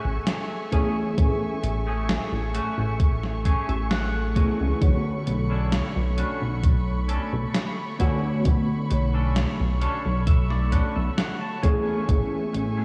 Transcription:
Already playing: E3 A3 B3 C#4 E5 G#5 C#6
0.05 A1
0.27 snare, closed hi-hat
0.72 E3 A3 B3 C#4 G#4, kick, closed hi-hat
1.16 A1 E3 A3 B3 C#4 G#4, kick, closed hi-hat
1.63 A1, muted clean electric guitar stroke, closed hi-hat
1.86 A3 C#4 G#4
2.09 snare, closed hi-hat
2.32 A1
2.54 A3 C#4 F#4, closed hi-hat
2.78 A1
3.00 kick, closed hi-hat
3.23 snare
3.45 A3 C#4 G#4 C#5, kick, closed hi-hat
3.69 A1 E5, closed hi-hat
3.90 F#5, snare, closed hi-hat
4.35 E3 A3 B3 C#4 F#4 G#4 G#5, kick, closed hi-hat
4.60 C#2
4.80 B1 D3 A3 B3 F#4 C#5 B5, kick, closed hi-hat
5.26 B1, muted clean electric guitar stroke, closed hi-hat
5.50 C#4 D4 E4
5.72 snare, closed hi-hat
5.96 B1
6.18 C#4 D4 F#4, closed hi-hat
6.42 B1
6.63 kick, closed hi-hat
7.08 C#4 D4 A4, closed hi-hat
7.33 B1
7.54 snare, closed hi-hat
7.99 D3 A3 B3 C#4 D4 E4 F#4 C#5, kick, closed hi-hat
8.44 B1 D3 A3 B3 F#4, kick, closed hi-hat
8.90 B1, muted clean electric guitar stroke, closed hi-hat
9.14 C#4 D4 A4
9.36 snare, closed hi-hat
9.60 B1
9.81 C#4 D4 A4 C#5, closed hi-hat
10.05 B1
10.27 E5, kick, closed hi-hat
10.50 D5, snare
10.72 C#4 D4 A4 F#5, kick, closed hi-hat
10.96 B1 E5
11.18 F#5, snare, closed hi-hat
11.41 A5
11.62 E3 A3 B3 C#4 G#4 E5 G#5, kick, closed hi-hat
12.08 A1 E3 A3 B3 C#4 G#4, kick, closed hi-hat
12.53 A1, muted clean electric guitar stroke, closed hi-hat
12.77 A3 C#4 G#4

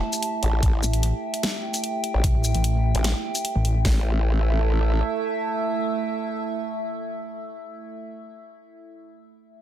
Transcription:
Already playing: A3 E4 G4 E5 A5
0.13 closed hi-hat, shaker
0.23 closed hi-hat
0.43 A1, closed hi-hat
0.63 A1, kick, closed hi-hat
0.73 G5
0.83 A1, shaker
0.93 closed hi-hat
1.03 closed hi-hat
1.34 closed hi-hat
1.43 snare, closed hi-hat
1.74 closed hi-hat, shaker
1.84 closed hi-hat
2.04 closed hi-hat
2.14 A1
2.24 C2, kick, closed hi-hat
2.34 A1
2.44 shaker
2.54 A1, closed hi-hat
2.64 closed hi-hat
2.95 A1, closed hi-hat
3.04 snare, closed hi-hat
3.35 closed hi-hat, shaker
3.45 closed hi-hat
3.55 A1
3.65 closed hi-hat
3.85 A1 A3 E4 A4 E5, kick, snare, open hi-hat
3.91 E5
3.97 A5

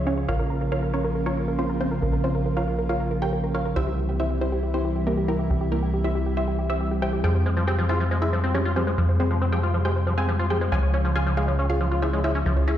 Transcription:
Already playing: C#2 C#3 F3 G#3 F4
0.07 C#4 F4 G#4 C#5
0.18 C#5
0.28 A#1 F3 A#3 F4 A#4 C#5 F5
0.39 A#4
0.50 A#4
0.61 A#4
0.72 F4 A#4 C#5 F5
0.83 A#4
0.94 C#4 F4 A#4 C#5
1.04 A#4
1.15 A#4
1.26 C#4 F4 A#4 C#5
1.37 A#4
1.48 A#4
1.59 C4 C#4 F4 C5
1.70 A#4
1.81 C4 C#4 F4 C5
1.91 A#4
2.02 A#1 A#4
2.13 A#4
2.24 C4 C#4 F4 C5
2.35 A#4
2.46 A#4
2.57 F4 A#4 C#5 F5
2.68 A#4
2.79 A#4
2.89 F4 A#4 C#5 F5
3.00 A#4
3.11 A#4
3.22 G4 A#4 C#5 G5
3.33 A#4
3.44 A#4
3.55 F4 A#4 C#5 F5
3.65 A#4
3.76 C2 C3 E3 G3 E4 G4 C5 E5
3.87 G4
3.98 G4
4.09 G4
4.20 E4 G4 C5 E5
4.30 G4
4.41 C4 E4 G4 C5
4.52 G4
4.63 G4
4.74 C4 E4 G4 C5
4.85 G4
4.96 G4
5.07 A#3 E4 G4 A#4
5.18 G4
5.28 A#3 E4 G4 A#4
5.39 G4
5.50 C2 G4
5.61 G4
5.72 A#3 E4 G4 A#4
5.83 G4
5.94 G4
6.04 E4 G4 C5 E5
6.15 G4
6.26 G4
6.37 E4 G4 C5 E5
6.48 G4
6.59 G4
6.70 E4 G4 C5 E5
6.81 G4
6.91 G4
7.02 G4 C5 E5 G5
7.13 G4
7.24 F2 F3 G#3 F4 G4 G#4 C5 G5
7.35 C5
7.46 G#3 C5
7.57 F3 C5
7.67 C4 G4 G#4 C5 G5
7.78 F3 C5
7.89 E4 F4 G#4 C5 E5
8.00 F3 C5
8.11 G#3 C5
8.22 E4 G#4 C5 E5
8.33 F3 C5
8.44 C4 C5
8.54 F3 C#4 G4 G#4 C#5
8.65 F4 C5
8.76 F3 C4 G4 G#4 C5
8.87 G#3 C5
8.98 F2 F3 C5
9.09 C5
9.20 G#3 C4 G4 G#4 C5
9.31 F3 C5
9.41 C4 C5
9.52 F3 G4 G#4 C5 G5
9.63 F4 C5
9.74 F3 C5
9.85 G#3 G4 G#4 C5 G5
9.96 C5
10.07 F3 C5
10.18 C4 G#4 C5 F5 G#5
10.28 F3 C5
10.39 F4 C5
10.50 F3 G4 G#4 C5 G5
10.61 G#3 C5
10.72 C#2 C#3 F3 G#4 C#5 F5 G#5
10.83 C#5
10.94 C#4 C#5
11.04 F3 C#5
11.15 F4 G#4 C#5 F5 G#5
11.26 F3 C#5
11.37 G#3 F4 G#4 C#5 F5
11.48 F3 C#5
11.59 C#4 C#5
11.70 F4 G#4 C#5 F5
11.81 F3 C#5
11.91 F4 C#5
12.02 F3 E4 G#4 C#5 E5
12.13 G#3 C#5
12.24 F3 E4 G#4 C#5 E5
12.35 C#4 C#5
12.46 C#2 F3 C#5
12.57 C#5
12.68 C#4 E4 G#4 C#5 E5

